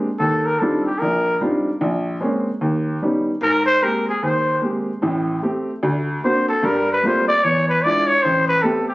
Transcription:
0.19 D#2 A4
0.45 A#4
0.59 G3 C4 D4 D#4 F4 A4
0.86 G4
0.99 A#1 A#4
1.41 G3 C4 D4 D#4 F4
1.81 A#1
2.20 G#3 A#3 C4 C#4
2.61 D#2
3.02 G3 B3 C#4 D#4
3.42 G#2 A#4
3.66 C5
3.82 G#3 A#3 C4 G4 A#4
4.09 G#4
4.23 D#2 C5
4.62 G#3 A#3 C4 G4
5.02 A1 A2
5.43 A3 C4 G4
5.83 D2
6.24 A#3 C4 D4 F#4 C5
6.48 A4
6.63 G2 G3 A#4
6.92 B4
7.03 G3 A3 A#3 C4 F4 C5
7.28 D5
7.44 E2 C#5
7.69 B4
7.82 G#3 D4 E4 F4 D5
8.07 C#5
8.22 A1 C5
8.47 B4
8.62 A3 B3 C4 G4 A4
8.87 G4

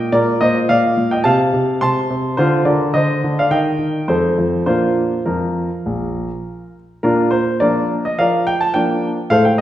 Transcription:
Already playing: A#2 G5
0.12 A#2 A#4 D5
0.41 A#2 C5 D#5
0.69 A#2 D5 F5
0.97 A#2
1.11 D#5 G5
1.24 C3 F5 A5
1.53 C3
1.81 C3 A5 C6
2.10 C3
2.37 D3 F4 C5
2.65 D3 A#4 D5
2.94 D3 C5 D#5
3.24 D3
3.39 D5 F5
3.51 D#3 D#5 G5
3.79 D#3
4.08 F2 A4 C5
4.38 F2
4.66 A#2 A#3 D4 F4 C5
5.25 F2 F4 A#4
5.86 A#1
7.03 A#2 D4 F4 A#4
7.31 C5
7.60 F3 A#3 D4 F4 A#4 D5
8.05 D#5
8.19 F3 A#4 D5 F5
8.47 G5
8.61 A5
8.74 F3 A#3 D4 G5
9.30 A2 A4 C5 F5
9.45 G5

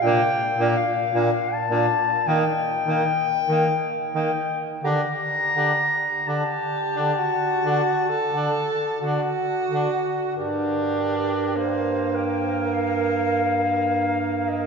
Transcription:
0.02 A#2 A#3 D4 G5
0.59 A#2 A#3 D4
0.77 F5
1.14 A#2 A#3 D4
1.53 A5
1.71 A#2 A#3 D4
2.27 D#3 A#3 D#4 G5
2.87 D#3 A#3 D#4
3.49 D#3 A#3 D#4
4.15 D#3 A#3 D#4 G5
4.83 D3 D4 G4 A#5
5.56 D3 D4 G4
6.27 D3 D4 G4 A5
6.96 D3 D4
7.18 F#4
7.65 D3 D4
8.09 A4
8.33 D3 D4
9.01 D3 D4 F#4
9.72 D3 D4
10.37 G2 D4 G4 A#4
11.57 A#3 C5
12.15 A#4 G5
12.73 F5
13.89 A#4
14.49 D#5

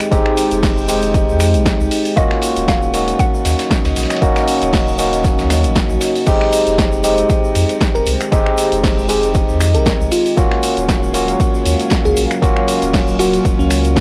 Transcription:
Already playing: G#3 D#4 G5
0.00 finger snap, closed hi-hat, shaker
0.11 F1 G#3 C4 D#4 G4, kick, closed hi-hat, ride, shaker
0.26 finger snap
0.37 open hi-hat, ride, shaker
0.51 F1, closed hi-hat, shaker
0.63 kick, snare, closed hi-hat, open hi-hat, shaker
0.78 shaker
0.88 G#3 C4 D#4 G4, open hi-hat, ride, shaker
1.02 closed hi-hat, shaker
1.14 kick, closed hi-hat, ride, shaker
1.28 F2, shaker
1.40 finger snap, open hi-hat, ride, shaker
1.54 A#1, closed hi-hat, shaker
1.66 kick, snare, closed hi-hat, ride, shaker
1.80 C2, shaker
1.91 open hi-hat, ride, shaker
2.05 open hi-hat, shaker
2.16 D#1 A#3 C#4 F4 F#4 D#5, kick, closed hi-hat, ride, shaker
2.31 finger snap, snare
2.42 open hi-hat, ride, shaker
2.56 D#1, closed hi-hat, shaker
2.62 F#3
2.68 F5, kick, snare, closed hi-hat, ride, shaker
2.72 D#5
2.82 shaker
2.93 A#3 C#4 D#4 F#4, open hi-hat, ride, shaker
3.08 closed hi-hat, shaker
3.19 F#5, kick, closed hi-hat, ride, shaker
3.34 shaker
3.45 D#2, snare, open hi-hat, ride, shaker
3.59 snare, closed hi-hat, ride, shaker
3.70 kick, snare, closed hi-hat, ride, shaker
3.85 C#2, snare, ride, shaker
3.96 A#1, snare, open hi-hat, ride, shaker
4.03 snare, ride
4.10 finger snap, snare, closed hi-hat, ride, shaker
4.15 snare, ride
4.21 D#1 A#3 C#4 D#4 F#4, kick, closed hi-hat, ride, shaker
4.36 finger snap, snare, ride, shaker
4.48 open hi-hat, shaker
4.62 D#1, closed hi-hat, ride, shaker
4.73 kick, snare, closed hi-hat, open hi-hat, shaker
4.87 shaker
4.98 A#3 C#4 D#4 F#4, open hi-hat, ride, shaker
5.13 closed hi-hat, shaker
5.24 kick, snare, closed hi-hat, ride, shaker
5.39 D#2, snare, ride, shaker
5.50 finger snap, snare, open hi-hat, ride, shaker
5.64 G#1, closed hi-hat, shaker
5.75 kick, snare, closed hi-hat, ride, shaker
5.89 A#1, shaker
6.01 snare, open hi-hat, ride, shaker
6.16 open hi-hat, shaker
6.26 F1 G#3 C4 D#4 G4 C5 D#5, kick, closed hi-hat, crash, ride, shaker
6.41 finger snap, snare
6.53 G#3, open hi-hat, ride, shaker
6.67 F1, closed hi-hat, shaker
6.78 kick, snare, closed hi-hat, ride, shaker
6.92 shaker
7.03 G#3 C4 D#4 G4, open hi-hat, ride, shaker
7.16 G5, closed hi-hat, shaker
7.30 kick, closed hi-hat, ride, shaker
7.44 shaker
7.55 F2, open hi-hat, ride, shaker
7.69 closed hi-hat, ride, shaker
7.81 kick, snare, closed hi-hat, ride, shaker
7.95 D#1 A#4, ride, shaker
8.06 C2, open hi-hat, ride, shaker
8.21 finger snap, closed hi-hat, shaker
8.31 F1 G#3 C4 D#4 G4, kick, closed hi-hat, ride, shaker
8.46 finger snap
8.58 open hi-hat, ride, shaker
8.72 F1, closed hi-hat, shaker
8.83 kick, snare, closed hi-hat, open hi-hat, shaker
8.99 shaker
9.08 G#3 C4 D#4 G4 G#4, open hi-hat, ride, shaker
9.23 closed hi-hat, shaker
9.34 kick, closed hi-hat, ride, shaker
9.49 F2, shaker
9.60 finger snap, open hi-hat, ride, shaker
9.74 A#1 A#4, closed hi-hat, shaker
9.86 kick, snare, closed hi-hat, ride, shaker
10.00 C2, shaker
10.11 F4, open hi-hat, ride, shaker
10.26 open hi-hat, shaker
10.37 D#1 F#3 A#3 C#4 F4 F#4 A#4 C#5 F5, kick, closed hi-hat, ride, shaker
10.51 finger snap, snare
10.63 F5, open hi-hat, ride, shaker
10.70 F#3
10.77 D#1, closed hi-hat, shaker
10.88 kick, snare, closed hi-hat, ride, shaker
11.03 shaker
11.13 A#3 C#4 F4 F#4, open hi-hat, ride, shaker
11.28 closed hi-hat, shaker
11.40 kick, closed hi-hat, ride, shaker
11.54 shaker
11.65 D#2, open hi-hat, ride, shaker
11.80 closed hi-hat, ride, shaker
11.90 kick, snare, closed hi-hat, ride, shaker
12.05 C#2 G#4, ride, shaker
12.17 A#1, open hi-hat, ride, shaker
12.31 finger snap, closed hi-hat, shaker
12.42 D#1 A#3 C#4 F4 F#4 D#5, kick, closed hi-hat, ride, shaker
12.56 finger snap
12.68 open hi-hat, ride, shaker
12.82 D#1, closed hi-hat, shaker
12.93 kick, snare, closed hi-hat, open hi-hat, shaker
13.08 shaker
13.19 A#3 C#4 F4 F#4, open hi-hat, ride, shaker
13.33 closed hi-hat, shaker
13.45 D#1, kick, closed hi-hat, ride, shaker
13.59 C#2 C#4, shaker
13.70 finger snap, open hi-hat, ride, shaker
13.85 closed hi-hat, shaker
13.96 kick, snare, closed hi-hat, ride, shaker

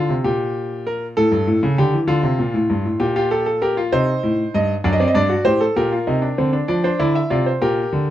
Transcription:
Already playing: F4
0.09 C3
0.24 A#2 G4
0.87 A#4
1.17 A2 A4
1.32 G2
1.47 A2
1.63 C#3
1.78 D3 G4
1.93 E3
2.07 D3 F4
2.23 C3
2.39 A#2
2.54 A2
2.70 G2
2.85 A2
3.00 A#2 G4
3.16 F4 G4
3.31 G4 A4
3.46 A4
3.62 G4 A#4
3.77 F4
3.92 C3 D#4 C5
4.23 A2
4.54 G2 D#5
4.84 F#2 D4 D5
4.93 D#5
5.00 C4 D5
5.08 D#5
5.14 G2 D4 D5
5.29 F#4
5.45 A2 G4 C5
5.61 A4
5.76 A#2 G4 A#4
5.92 F4
6.07 C3 D#4
6.22 D4
6.38 D3 C4
6.53 D4
6.68 F3 D4 D5
6.84 D4 C5
6.99 D3 E4 D5
7.15 E5
7.30 C3 F4 D5
7.46 C5
7.61 A#2 G4 A#4
7.92 D3

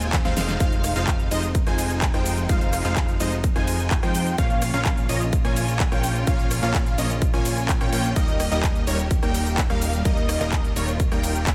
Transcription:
Already playing: D#1 C3 D#3 G#3 C4 D#4 F4 C5 G#5
0.01 closed hi-hat, shaker
0.13 kick, snare, clap, closed hi-hat, shaker
0.25 D#1 G#3 C4 D#4 C5 F5, snare, closed hi-hat, shaker
0.37 F1 G#3 C4 D#4 C5 F5, snare, open hi-hat, ride, shaker
0.48 snare, shaker
0.60 F1 C3 F3 G#3 D#4 F4 C5 F5, kick, closed hi-hat, shaker
0.72 closed hi-hat, shaker
0.84 cross-stick, open hi-hat, ride, shaker
0.96 F1 G#3 D#4 F4 C5 F5, closed hi-hat, shaker
1.07 kick, clap, closed hi-hat, shaker
1.19 closed hi-hat, shaker
1.31 F1 G#3 D#4 F4 C5 D#5, open hi-hat, ride, shaker
1.43 closed hi-hat, shaker
1.55 kick, closed hi-hat, shaker
1.67 F1 G#3 D#4 F4 C5 G#5, cross-stick, closed hi-hat, shaker
1.78 open hi-hat, ride, shaker
1.90 closed hi-hat, shaker
2.02 kick, clap, closed hi-hat, shaker
2.14 F1 G#3 D#4 F4 C5 G5, cross-stick, closed hi-hat, shaker
2.26 open hi-hat, ride, shaker
2.38 closed hi-hat, shaker
2.49 F1 G#3 D#4 F4 C5 F5, kick, closed hi-hat, shaker
2.61 closed hi-hat, shaker
2.73 cross-stick, open hi-hat, ride, shaker
2.85 F1 G#3 D#4 F4 C5 F5, clap, closed hi-hat, shaker
2.96 kick, clap, closed hi-hat, shaker
3.08 closed hi-hat, shaker
3.20 F1 G#3 D#4 F4 C5 D#5, open hi-hat, ride, shaker
3.32 closed hi-hat, shaker
3.44 kick, closed hi-hat, shaker
3.56 F1 G#3 D#4 F4 C5 G#5, cross-stick, closed hi-hat, shaker
3.67 open hi-hat, ride, shaker
3.79 closed hi-hat, shaker
3.91 kick, clap, closed hi-hat, shaker
4.03 F2 G#3 D#4 F4 C5 G5, cross-stick, closed hi-hat, shaker
4.15 open hi-hat, ride, shaker
4.26 closed hi-hat, shaker
4.38 A#1 C#3 A#3 C#4 F4 C#5 F5, kick, closed hi-hat, shaker
4.50 closed hi-hat, shaker
4.62 cross-stick, open hi-hat, ride, shaker
4.74 A#1 A#3 C#4 F4 C#5 F5, shaker
4.85 kick, clap, closed hi-hat, shaker
4.97 closed hi-hat, shaker
5.09 A#1 A#3 C#4 F4 C#5 D#5, open hi-hat, ride, shaker
5.21 closed hi-hat, shaker
5.33 kick, closed hi-hat, shaker
5.45 A#1 A#3 C#4 F4 C#5 G#5, cross-stick, closed hi-hat, shaker
5.56 open hi-hat, ride, shaker
5.68 closed hi-hat, shaker
5.80 kick, clap, closed hi-hat, shaker
5.92 A#1 A#3 C#4 F4 C#5 G5, cross-stick, closed hi-hat, shaker
6.04 open hi-hat, ride, shaker
6.15 closed hi-hat, shaker
6.27 A#1 A#3 C#4 F4 C#5 F5, kick, closed hi-hat, shaker
6.39 closed hi-hat, shaker
6.51 cross-stick, open hi-hat, ride, shaker
6.62 A#1 A#3 C#4 F4 C#5 F5, clap, closed hi-hat, shaker
6.74 kick, clap, closed hi-hat, shaker
6.86 closed hi-hat, shaker
6.98 A#1 A#3 C#4 F4 C#5 D#5, open hi-hat, ride, shaker
7.10 closed hi-hat, shaker
7.22 kick, closed hi-hat, shaker
7.34 A#1 A#3 C#4 F4 C#5 G#5, cross-stick, closed hi-hat, shaker
7.45 open hi-hat, ride, shaker
7.57 closed hi-hat, shaker
7.69 kick, clap, closed hi-hat, shaker
7.81 A#1 A#3 C#4 F4 C#5 G5, cross-stick, closed hi-hat, shaker
7.93 A#1 A#3 C#4 F4 C#5 G5, open hi-hat, ride, shaker
8.04 closed hi-hat, shaker
8.16 D#1 D#3 G3 A#3 D#4 G4 A#4 D#5, kick, closed hi-hat, shaker
8.28 closed hi-hat, shaker
8.40 cross-stick, open hi-hat, ride, shaker
8.52 D#1 G3 A#3 D#4 A#4 D#5, closed hi-hat, shaker
8.63 kick, clap, closed hi-hat, shaker
8.75 closed hi-hat, shaker
8.87 D#1 G3 A#3 D#4 A#4 C#5, open hi-hat, ride, shaker
8.99 closed hi-hat, shaker
9.11 kick, closed hi-hat, shaker
9.23 D#1 G3 A#3 D#4 A#4 G5, cross-stick, closed hi-hat, shaker
9.34 open hi-hat, ride, shaker
9.46 closed hi-hat, shaker
9.58 kick, clap, closed hi-hat, shaker
9.70 D#1 G3 A#3 D#4 A#4 F5, cross-stick, closed hi-hat, shaker
9.82 open hi-hat, ride, shaker
9.93 closed hi-hat, shaker
10.05 D#1 G3 A#3 D#4 F4 A#4 D#5, kick, closed hi-hat, shaker
10.17 closed hi-hat, shaker
10.29 cross-stick, open hi-hat, ride, shaker
10.40 D#1 G3 A#3 D#4 A#4 D#5, clap, closed hi-hat, shaker
10.52 kick, clap, closed hi-hat, shaker
10.64 closed hi-hat, shaker
10.76 D#1 G3 A#3 D#4 A#4 C#5, open hi-hat, ride, shaker
10.88 closed hi-hat, shaker
11.00 kick, closed hi-hat, shaker
11.12 D#1 G3 A#3 D#4 A#4 G5, cross-stick, closed hi-hat, shaker
11.23 open hi-hat, ride, shaker
11.35 closed hi-hat, shaker
11.47 kick, clap, closed hi-hat, shaker

